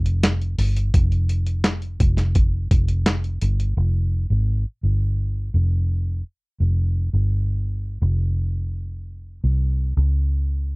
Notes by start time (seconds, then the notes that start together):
Already playing: F1
0.06 closed hi-hat
0.23 snare, closed hi-hat
0.41 closed hi-hat
0.58 G1, open hi-hat
0.76 closed hi-hat
0.94 F1, kick, closed hi-hat
1.12 closed hi-hat
1.29 closed hi-hat
1.46 closed hi-hat
1.64 snare, closed hi-hat
1.82 closed hi-hat
2.00 F1, kick, closed hi-hat
2.17 snare, closed hi-hat
2.35 kick, closed hi-hat
2.71 F1, kick, closed hi-hat
2.88 closed hi-hat
3.06 snare, closed hi-hat
3.24 closed hi-hat
3.42 G1, closed hi-hat
3.60 closed hi-hat
3.77 F1
4.30 G#1
4.83 G1
5.54 F1
6.60 F1
7.13 G1
8.02 F1
9.44 C2
9.97 C#2